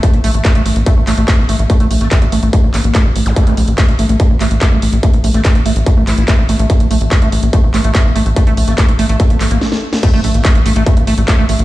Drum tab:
CC |----------------|----------------|----------------|----------------|
HH |xxoxxxoxx-oxx-ox|xxoxxxoxx-oxx-ox|xxoxxxoxx-oxx-ox|xxoxxxoxx-oxx-ox|
CP |----x-----x-x---|----x-----x-x---|----x-----x-x---|----x-----x-x---|
SD |----------------|----------------|----------------|----------------|
BD |o---o---o---o---|o---o---o---o---|o---o---o---o---|o---o---o---o---|

CC |----------------|----------------|x---------------|
HH |xxoxxxoxx-oxx-ox|xxoxxxoxxxox----|x-oxxxoxxxoxx-ox|
CP |----x-----x-x---|----x-----x-----|----x-------x---|
SD |----------------|------------oo-o|----------------|
BD |o---o---o---o---|o---o---o-------|o---o---o---o---|